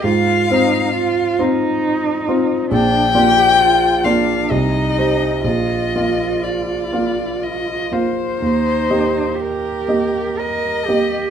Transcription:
<<
  \new Staff \with { instrumentName = "Violin" } { \time 3/4 \key ees \major \tempo 4 = 64 f''4. r4. | g''4. f''8 ees''4 | ees''4 d''4 ees''8 c''8~ | c''4 bes'4 ees''4 | }
  \new Staff \with { instrumentName = "Cello" } { \time 3/4 \key ees \major f'8 ees'8 f'8 ees'4. | d'8 g'8 f'8 d'8 ees'4 | f'2~ f'8 r8 | ees'4 g'4 bes'8 g'8 | }
  \new Staff \with { instrumentName = "Grand piano" } { \time 3/4 \key ees \major aes,8 <c' f' c''>4 <c' f' c''>4 <c' f' c''>8 | bes,,8 <bes f' d''>4 <bes f' d''>8 c,8 <g ees' c''>8 | bes,,8 <bes f' f''>4 <bes f' f''>4 <bes f' f''>8 | ees,8 <bes g' ees''>4 <bes g' ees''>4 <bes g' ees''>8 | }
>>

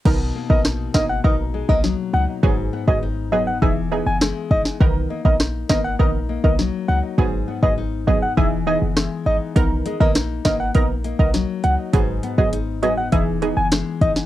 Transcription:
<<
  \new Staff \with { instrumentName = "Soft synth lead" } { \time 4/4 \key b \major \tempo 4 = 101 r8. dis''16 r8 dis''16 fis''16 dis''16 r8 dis''16 r8 fis''16 r16 | r8. dis''16 r8 dis''16 fis''16 e''16 r8 gis''16 r8 dis''16 r16 | r8. dis''16 r8 dis''16 fis''16 dis''16 r8 dis''16 r8 fis''16 r16 | r8. dis''16 r8 dis''16 fis''16 e''16 r16 dis''16 r8. dis''16 r16 |
r8. dis''16 r8 dis''16 fis''16 dis''16 r8 dis''16 r8 fis''16 r16 | r8. dis''16 r8 dis''16 fis''16 e''16 r8 gis''16 r8 dis''16 r16 | }
  \new Staff \with { instrumentName = "Nylon-string guitar" } { \time 4/4 \key b \major <b, dis'>8 ais8 dis'8 ais8 dis'8 gis16 ais16 fis8 dis'8 | <gis, dis'>8 b8 dis'8 b8 e8 b8 gis8 dis'8 | dis'8 ais8 dis'8 ais8 dis'8 ais8 fis8 dis'8 | <gis, dis'>8 b8 dis'8 b8 e8 b8 gis8 dis'8 |
dis'8 gis16 ais16 dis'8 ais8 dis'8 ais8 fis8 dis'8 | <gis, dis'>8 b8 dis'8 b8 e8 b8 gis8 dis'8 | }
  \new Staff \with { instrumentName = "Synth stab" } { \time 4/4 \key b \major <dis b ais'>8. <dis b ais'>16 r8 <dis b ais'>16 r16 <dis b ais'>16 r8 <dis b ais'>16 r4 | <fis b gis'>8. <fis b gis'>16 r8 <fis b gis'>16 r16 <e dis' gis'>8 <e dis' gis'>16 r4 r16 | <dis b ais'>8. <dis b ais'>16 r8 <dis b ais'>16 r16 <dis b ais'>16 r8 <dis b ais'>16 r4 | <fis b gis'>8. <fis b gis'>16 r8 <fis b gis'>16 r16 <e dis' gis'>8 <e dis' gis'>16 r4 r16 |
<dis b ais'>8. <dis b ais'>16 r8 <dis b ais'>16 r16 <dis b ais'>16 r8 <dis b ais'>16 r4 | <fis b gis'>8. <fis b gis'>16 r8 <fis b gis'>16 r16 <e dis' gis'>8 <e dis' gis'>16 r4 r16 | }
  \new Staff \with { instrumentName = "808-style bass" } { \clef bass \time 4/4 \key b \major b,,8 r16 ais,,8. gis,,8 ais,,8. b,,8 r16 cis,16 r16 | gis,,8 r16 gis,,8. fis,,8 e,,8. fis,,8 r16 gis,,16 r16 | b,,8 r16 ais,,8. gis,,8 ais,,8. b,,8 r16 cis,16 r16 | gis,,8 r16 gis,,8. fis,,8 e,,8. fis,,8 r16 gis,,16 r16 |
b,,8 r16 ais,,8. gis,,8 ais,,8. b,,8 r16 cis,16 r16 | gis,,8 r16 gis,,8. fis,,8 e,,8. fis,,8 r16 gis,,16 r16 | }
  \new DrumStaff \with { instrumentName = "Drums" } \drummode { \time 4/4 <cymc bd>8. bd16 <ss sn>8 <bd ss sn>8 bd8. bd16 sn4 | bd8. bd16 r4 bd4 <ss sn>8 bd16 sn16 | bd8. bd16 <ss sn>8 <bd ss sn>8 bd8. bd16 sn4 | bd8. bd16 r8 bd8 bd4 <ss sn>4 |
<hh bd>8 hh16 bd16 <hh ss sn>8 <hh bd ss sn>8 <hh bd>8 hh16 bd16 <hh sn>8 hh8 | <hh bd>8 hh16 bd16 hh8 hh8 <hh bd>8 hh8 <hh ss sn>8 <hh bd>16 sn16 | }
>>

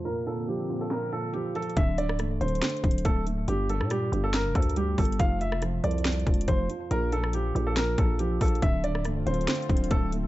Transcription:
<<
  \new Staff \with { instrumentName = "Grand piano" } { \time 4/4 \key d \minor \tempo 4 = 140 bes'8 a'8 g'8. a'16 bes'8 a'8 g'8 a'8 | e''8 d''8 r8 c''4. a'8 r8 | g'8 a'8 g'8. a'16 bes'8 a'8 g'8 a'8 | f''8 e''8 r8 d''4. c''8 r8 |
bes'8 a'8 g'8. a'16 bes'8 a'8 g'8 a'8 | e''8 d''8 r8 c''4. a'8 r8 | }
  \new Staff \with { instrumentName = "Analog synth pad" } { \time 4/4 \key d \minor <d bes c'>1 | r1 | r1 | r1 |
r1 | <d c' f'>1 | }
  \new Staff \with { instrumentName = "Felt piano" } { \clef bass \time 4/4 \key d \minor bes,8 bes,8 f8 bes,8 bes,8 bes,8 f8 f8 | d8 d8 a8 d8 d8 d8 a8 a8 | g,8 g,8 g8 g,8 g,8 g,8 g8 g8 | f,8 f,8 f8 f,8 f,8 f,8 f8 f8 |
bes,8 bes,8 f8 bes,8 bes,8 bes,8 f8 f8 | d8 d8 a8 d8 d8 d8 a8 a8 | }
  \new Staff \with { instrumentName = "808-style bass" } { \clef bass \time 4/4 \key d \minor r1 | d,,4 c,,8 d,,8 r8 d,,8 d,,4 | g,,8. bes,8. g,,8. f,,16 d,4 g,,8 | f,,4. c,4 e,,8 f,,8 r8 |
bes,,4. bes,,4 bes,,4 bes,,8 | d,,4 c,,8 d,,8 r8 d,,8 d,,4 | }
  \new DrumStaff \with { instrumentName = "Drums" } \drummode { \time 4/4 hh8 hh8 hh8 hh8 sn8 hh8 \tuplet 3/2 { hh16 r16 r16 hh16 hh16 hh16 } | <hh bd>8 hh16 ss16 \tuplet 3/2 { <hh ss>16 r16 r16 hh16 hh16 hh16 <hh sn>16 hh16 hh16 <hh bd>16 hh16 hh16 } <hh bd>8 hh8 | hh8 hh16 ss16 <hh ss>8 hh8 \tuplet 3/2 { <hh sn>16 r16 r16 <hh bd>16 hh16 hh16 hh16 r16 r16 <hh hho bd>16 hh16 hh16 } | <hh bd>8 hh16 ss16 \tuplet 3/2 { <hh ss>16 r16 r16 hh16 hh16 hh16 <hh sn>16 hh16 hh16 <hh bd>16 hh16 hh16 } <hh bd>8 hh8 |
hh8 hh16 ss16 hh8 hh8 <hh sn>8 <hh bd>8 \tuplet 3/2 { hh16 r16 r16 <hh hho bd>16 hh16 hh16 } | <hh bd>8 hh16 ss16 \tuplet 3/2 { <hh ss>16 r16 r16 hh16 hh16 hh16 <hh sn>16 hh16 hh16 <hh bd>16 hh16 hh16 } <hh bd>8 hh8 | }
>>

